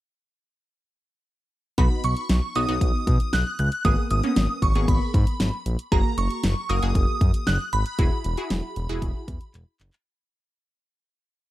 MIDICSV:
0, 0, Header, 1, 5, 480
1, 0, Start_track
1, 0, Key_signature, 5, "major"
1, 0, Tempo, 517241
1, 1652, Time_signature, 4, 2, 24, 8
1, 10679, End_track
2, 0, Start_track
2, 0, Title_t, "Synth bell"
2, 0, Program_c, 0, 98
2, 1656, Note_on_c, 0, 83, 82
2, 1897, Note_on_c, 0, 85, 88
2, 1901, Note_off_c, 0, 83, 0
2, 2374, Note_on_c, 0, 87, 96
2, 2388, Note_off_c, 0, 85, 0
2, 3093, Note_on_c, 0, 90, 106
2, 3115, Note_off_c, 0, 87, 0
2, 3316, Note_off_c, 0, 90, 0
2, 3333, Note_on_c, 0, 90, 92
2, 3572, Note_on_c, 0, 87, 99
2, 3580, Note_off_c, 0, 90, 0
2, 3680, Note_off_c, 0, 87, 0
2, 3811, Note_on_c, 0, 87, 94
2, 4293, Note_on_c, 0, 85, 87
2, 4306, Note_off_c, 0, 87, 0
2, 4530, Note_on_c, 0, 83, 73
2, 4540, Note_off_c, 0, 85, 0
2, 5214, Note_off_c, 0, 83, 0
2, 5493, Note_on_c, 0, 82, 85
2, 5733, Note_on_c, 0, 85, 85
2, 5739, Note_off_c, 0, 82, 0
2, 6212, Note_on_c, 0, 87, 98
2, 6227, Note_off_c, 0, 85, 0
2, 6933, Note_on_c, 0, 90, 106
2, 6953, Note_off_c, 0, 87, 0
2, 7041, Note_off_c, 0, 90, 0
2, 7172, Note_on_c, 0, 83, 84
2, 8815, Note_off_c, 0, 83, 0
2, 10679, End_track
3, 0, Start_track
3, 0, Title_t, "Synth pluck"
3, 0, Program_c, 1, 84
3, 1652, Note_on_c, 1, 59, 72
3, 1652, Note_on_c, 1, 63, 68
3, 1652, Note_on_c, 1, 66, 82
3, 2187, Note_off_c, 1, 59, 0
3, 2187, Note_off_c, 1, 63, 0
3, 2187, Note_off_c, 1, 66, 0
3, 2373, Note_on_c, 1, 59, 71
3, 2373, Note_on_c, 1, 63, 69
3, 2373, Note_on_c, 1, 66, 83
3, 2461, Note_off_c, 1, 59, 0
3, 2461, Note_off_c, 1, 63, 0
3, 2461, Note_off_c, 1, 66, 0
3, 2492, Note_on_c, 1, 59, 75
3, 2492, Note_on_c, 1, 63, 68
3, 2493, Note_on_c, 1, 66, 80
3, 3206, Note_off_c, 1, 59, 0
3, 3206, Note_off_c, 1, 63, 0
3, 3206, Note_off_c, 1, 66, 0
3, 3571, Note_on_c, 1, 58, 74
3, 3571, Note_on_c, 1, 59, 69
3, 3571, Note_on_c, 1, 68, 81
3, 3839, Note_off_c, 1, 58, 0
3, 3839, Note_off_c, 1, 59, 0
3, 3839, Note_off_c, 1, 68, 0
3, 3932, Note_on_c, 1, 58, 74
3, 3932, Note_on_c, 1, 59, 65
3, 3932, Note_on_c, 1, 61, 81
3, 4289, Note_off_c, 1, 58, 0
3, 4289, Note_off_c, 1, 59, 0
3, 4289, Note_off_c, 1, 61, 0
3, 4412, Note_on_c, 1, 59, 70
3, 4412, Note_on_c, 1, 68, 84
3, 4413, Note_on_c, 1, 58, 73
3, 5125, Note_off_c, 1, 59, 0
3, 5126, Note_off_c, 1, 58, 0
3, 5126, Note_off_c, 1, 68, 0
3, 5493, Note_on_c, 1, 58, 76
3, 5493, Note_on_c, 1, 66, 68
3, 5493, Note_on_c, 1, 68, 83
3, 6027, Note_off_c, 1, 66, 0
3, 6028, Note_off_c, 1, 58, 0
3, 6028, Note_off_c, 1, 68, 0
3, 6214, Note_on_c, 1, 58, 75
3, 6214, Note_on_c, 1, 66, 66
3, 6214, Note_on_c, 1, 70, 82
3, 6302, Note_off_c, 1, 58, 0
3, 6302, Note_off_c, 1, 66, 0
3, 6302, Note_off_c, 1, 70, 0
3, 6333, Note_on_c, 1, 58, 75
3, 6334, Note_on_c, 1, 66, 70
3, 6334, Note_on_c, 1, 68, 84
3, 7046, Note_off_c, 1, 58, 0
3, 7046, Note_off_c, 1, 66, 0
3, 7046, Note_off_c, 1, 68, 0
3, 7413, Note_on_c, 1, 64, 75
3, 7414, Note_on_c, 1, 66, 68
3, 7414, Note_on_c, 1, 68, 83
3, 7680, Note_off_c, 1, 64, 0
3, 7680, Note_off_c, 1, 66, 0
3, 7680, Note_off_c, 1, 68, 0
3, 7773, Note_on_c, 1, 64, 84
3, 7773, Note_on_c, 1, 66, 78
3, 7773, Note_on_c, 1, 68, 96
3, 8129, Note_off_c, 1, 64, 0
3, 8129, Note_off_c, 1, 66, 0
3, 8129, Note_off_c, 1, 68, 0
3, 8253, Note_on_c, 1, 64, 90
3, 8253, Note_on_c, 1, 66, 82
3, 8253, Note_on_c, 1, 68, 102
3, 8966, Note_off_c, 1, 64, 0
3, 8966, Note_off_c, 1, 66, 0
3, 8966, Note_off_c, 1, 68, 0
3, 10679, End_track
4, 0, Start_track
4, 0, Title_t, "Analog synth bass"
4, 0, Program_c, 2, 38
4, 1652, Note_on_c, 2, 35, 112
4, 1752, Note_off_c, 2, 35, 0
4, 1893, Note_on_c, 2, 35, 98
4, 1993, Note_off_c, 2, 35, 0
4, 2132, Note_on_c, 2, 35, 105
4, 2232, Note_off_c, 2, 35, 0
4, 2372, Note_on_c, 2, 35, 104
4, 2473, Note_off_c, 2, 35, 0
4, 2491, Note_on_c, 2, 35, 100
4, 2592, Note_off_c, 2, 35, 0
4, 2610, Note_on_c, 2, 35, 97
4, 2711, Note_off_c, 2, 35, 0
4, 2851, Note_on_c, 2, 47, 98
4, 2952, Note_off_c, 2, 47, 0
4, 3091, Note_on_c, 2, 35, 86
4, 3192, Note_off_c, 2, 35, 0
4, 3332, Note_on_c, 2, 37, 93
4, 3432, Note_off_c, 2, 37, 0
4, 3572, Note_on_c, 2, 32, 104
4, 3672, Note_off_c, 2, 32, 0
4, 3810, Note_on_c, 2, 32, 97
4, 3911, Note_off_c, 2, 32, 0
4, 4051, Note_on_c, 2, 32, 95
4, 4152, Note_off_c, 2, 32, 0
4, 4289, Note_on_c, 2, 32, 96
4, 4391, Note_off_c, 2, 32, 0
4, 4410, Note_on_c, 2, 32, 98
4, 4512, Note_off_c, 2, 32, 0
4, 4530, Note_on_c, 2, 32, 104
4, 4631, Note_off_c, 2, 32, 0
4, 4771, Note_on_c, 2, 44, 104
4, 4872, Note_off_c, 2, 44, 0
4, 5011, Note_on_c, 2, 32, 96
4, 5112, Note_off_c, 2, 32, 0
4, 5251, Note_on_c, 2, 34, 85
4, 5352, Note_off_c, 2, 34, 0
4, 5493, Note_on_c, 2, 30, 107
4, 5593, Note_off_c, 2, 30, 0
4, 5731, Note_on_c, 2, 30, 101
4, 5832, Note_off_c, 2, 30, 0
4, 5972, Note_on_c, 2, 30, 104
4, 6073, Note_off_c, 2, 30, 0
4, 6211, Note_on_c, 2, 30, 95
4, 6312, Note_off_c, 2, 30, 0
4, 6333, Note_on_c, 2, 30, 95
4, 6433, Note_off_c, 2, 30, 0
4, 6451, Note_on_c, 2, 30, 101
4, 6552, Note_off_c, 2, 30, 0
4, 6691, Note_on_c, 2, 42, 93
4, 6792, Note_off_c, 2, 42, 0
4, 6932, Note_on_c, 2, 30, 91
4, 7033, Note_off_c, 2, 30, 0
4, 7173, Note_on_c, 2, 32, 89
4, 7273, Note_off_c, 2, 32, 0
4, 7412, Note_on_c, 2, 28, 104
4, 7513, Note_off_c, 2, 28, 0
4, 7653, Note_on_c, 2, 28, 100
4, 7753, Note_off_c, 2, 28, 0
4, 7892, Note_on_c, 2, 28, 102
4, 7993, Note_off_c, 2, 28, 0
4, 8134, Note_on_c, 2, 28, 97
4, 8234, Note_off_c, 2, 28, 0
4, 8253, Note_on_c, 2, 28, 100
4, 8353, Note_off_c, 2, 28, 0
4, 8370, Note_on_c, 2, 28, 103
4, 8471, Note_off_c, 2, 28, 0
4, 8611, Note_on_c, 2, 40, 94
4, 8712, Note_off_c, 2, 40, 0
4, 8852, Note_on_c, 2, 28, 91
4, 8953, Note_off_c, 2, 28, 0
4, 9092, Note_on_c, 2, 30, 91
4, 9193, Note_off_c, 2, 30, 0
4, 10679, End_track
5, 0, Start_track
5, 0, Title_t, "Drums"
5, 1651, Note_on_c, 9, 42, 77
5, 1652, Note_on_c, 9, 36, 97
5, 1744, Note_off_c, 9, 42, 0
5, 1745, Note_off_c, 9, 36, 0
5, 1891, Note_on_c, 9, 42, 74
5, 1983, Note_off_c, 9, 42, 0
5, 2010, Note_on_c, 9, 42, 46
5, 2103, Note_off_c, 9, 42, 0
5, 2129, Note_on_c, 9, 42, 70
5, 2130, Note_on_c, 9, 38, 113
5, 2221, Note_off_c, 9, 42, 0
5, 2223, Note_off_c, 9, 38, 0
5, 2371, Note_on_c, 9, 42, 68
5, 2464, Note_off_c, 9, 42, 0
5, 2492, Note_on_c, 9, 42, 48
5, 2585, Note_off_c, 9, 42, 0
5, 2610, Note_on_c, 9, 36, 82
5, 2611, Note_on_c, 9, 42, 81
5, 2703, Note_off_c, 9, 36, 0
5, 2704, Note_off_c, 9, 42, 0
5, 2851, Note_on_c, 9, 36, 93
5, 2852, Note_on_c, 9, 42, 67
5, 2943, Note_off_c, 9, 36, 0
5, 2945, Note_off_c, 9, 42, 0
5, 2970, Note_on_c, 9, 42, 58
5, 3063, Note_off_c, 9, 42, 0
5, 3090, Note_on_c, 9, 38, 106
5, 3093, Note_on_c, 9, 42, 72
5, 3183, Note_off_c, 9, 38, 0
5, 3186, Note_off_c, 9, 42, 0
5, 3331, Note_on_c, 9, 42, 74
5, 3423, Note_off_c, 9, 42, 0
5, 3451, Note_on_c, 9, 42, 53
5, 3544, Note_off_c, 9, 42, 0
5, 3571, Note_on_c, 9, 42, 80
5, 3572, Note_on_c, 9, 36, 99
5, 3663, Note_off_c, 9, 42, 0
5, 3664, Note_off_c, 9, 36, 0
5, 3810, Note_on_c, 9, 42, 73
5, 3903, Note_off_c, 9, 42, 0
5, 3930, Note_on_c, 9, 42, 47
5, 4022, Note_off_c, 9, 42, 0
5, 4049, Note_on_c, 9, 42, 71
5, 4050, Note_on_c, 9, 38, 113
5, 4142, Note_off_c, 9, 42, 0
5, 4143, Note_off_c, 9, 38, 0
5, 4289, Note_on_c, 9, 36, 77
5, 4291, Note_on_c, 9, 42, 68
5, 4381, Note_off_c, 9, 36, 0
5, 4384, Note_off_c, 9, 42, 0
5, 4411, Note_on_c, 9, 42, 49
5, 4504, Note_off_c, 9, 42, 0
5, 4530, Note_on_c, 9, 36, 82
5, 4533, Note_on_c, 9, 42, 83
5, 4622, Note_off_c, 9, 36, 0
5, 4625, Note_off_c, 9, 42, 0
5, 4771, Note_on_c, 9, 36, 93
5, 4773, Note_on_c, 9, 42, 68
5, 4864, Note_off_c, 9, 36, 0
5, 4866, Note_off_c, 9, 42, 0
5, 4891, Note_on_c, 9, 42, 60
5, 4984, Note_off_c, 9, 42, 0
5, 5011, Note_on_c, 9, 38, 111
5, 5014, Note_on_c, 9, 42, 72
5, 5104, Note_off_c, 9, 38, 0
5, 5107, Note_off_c, 9, 42, 0
5, 5252, Note_on_c, 9, 42, 75
5, 5345, Note_off_c, 9, 42, 0
5, 5373, Note_on_c, 9, 42, 55
5, 5465, Note_off_c, 9, 42, 0
5, 5493, Note_on_c, 9, 36, 103
5, 5493, Note_on_c, 9, 42, 80
5, 5585, Note_off_c, 9, 36, 0
5, 5586, Note_off_c, 9, 42, 0
5, 5733, Note_on_c, 9, 42, 73
5, 5826, Note_off_c, 9, 42, 0
5, 5852, Note_on_c, 9, 42, 50
5, 5944, Note_off_c, 9, 42, 0
5, 5971, Note_on_c, 9, 42, 70
5, 5973, Note_on_c, 9, 38, 114
5, 6064, Note_off_c, 9, 42, 0
5, 6066, Note_off_c, 9, 38, 0
5, 6213, Note_on_c, 9, 42, 67
5, 6306, Note_off_c, 9, 42, 0
5, 6333, Note_on_c, 9, 42, 49
5, 6426, Note_off_c, 9, 42, 0
5, 6450, Note_on_c, 9, 36, 82
5, 6453, Note_on_c, 9, 42, 86
5, 6543, Note_off_c, 9, 36, 0
5, 6546, Note_off_c, 9, 42, 0
5, 6691, Note_on_c, 9, 36, 92
5, 6694, Note_on_c, 9, 42, 68
5, 6784, Note_off_c, 9, 36, 0
5, 6787, Note_off_c, 9, 42, 0
5, 6811, Note_on_c, 9, 42, 60
5, 6904, Note_off_c, 9, 42, 0
5, 6930, Note_on_c, 9, 38, 110
5, 6933, Note_on_c, 9, 42, 72
5, 7023, Note_off_c, 9, 38, 0
5, 7026, Note_off_c, 9, 42, 0
5, 7172, Note_on_c, 9, 42, 77
5, 7264, Note_off_c, 9, 42, 0
5, 7291, Note_on_c, 9, 42, 54
5, 7384, Note_off_c, 9, 42, 0
5, 7411, Note_on_c, 9, 42, 81
5, 7412, Note_on_c, 9, 36, 96
5, 7504, Note_off_c, 9, 42, 0
5, 7505, Note_off_c, 9, 36, 0
5, 7651, Note_on_c, 9, 42, 74
5, 7743, Note_off_c, 9, 42, 0
5, 7771, Note_on_c, 9, 42, 48
5, 7864, Note_off_c, 9, 42, 0
5, 7891, Note_on_c, 9, 42, 74
5, 7892, Note_on_c, 9, 38, 116
5, 7984, Note_off_c, 9, 42, 0
5, 7985, Note_off_c, 9, 38, 0
5, 8132, Note_on_c, 9, 42, 67
5, 8225, Note_off_c, 9, 42, 0
5, 8253, Note_on_c, 9, 42, 50
5, 8346, Note_off_c, 9, 42, 0
5, 8370, Note_on_c, 9, 36, 84
5, 8373, Note_on_c, 9, 42, 81
5, 8463, Note_off_c, 9, 36, 0
5, 8465, Note_off_c, 9, 42, 0
5, 8611, Note_on_c, 9, 36, 94
5, 8613, Note_on_c, 9, 42, 70
5, 8704, Note_off_c, 9, 36, 0
5, 8706, Note_off_c, 9, 42, 0
5, 8730, Note_on_c, 9, 42, 57
5, 8823, Note_off_c, 9, 42, 0
5, 8852, Note_on_c, 9, 39, 52
5, 8853, Note_on_c, 9, 42, 71
5, 8945, Note_off_c, 9, 39, 0
5, 8946, Note_off_c, 9, 42, 0
5, 9091, Note_on_c, 9, 42, 74
5, 9092, Note_on_c, 9, 39, 87
5, 9184, Note_off_c, 9, 42, 0
5, 9185, Note_off_c, 9, 39, 0
5, 9211, Note_on_c, 9, 42, 54
5, 9212, Note_on_c, 9, 39, 88
5, 9304, Note_off_c, 9, 42, 0
5, 9305, Note_off_c, 9, 39, 0
5, 10679, End_track
0, 0, End_of_file